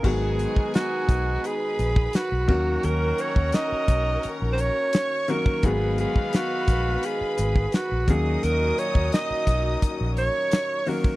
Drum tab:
CC |x-------------x-|----------------|----------------|----------------|
HH |--x-x-x-x-x-x---|x-x-x-x-x-x-x-x-|x-x-x-x-x-x-x-x-|x-x-x-x-x-x-x-o-|
SD |----o-------o---|----o-------o---|----o-------o---|----o-------o---|
BD |o--o--o----o--o-|---o--o--------o|o--o--o----o--o-|---o--o-o------o|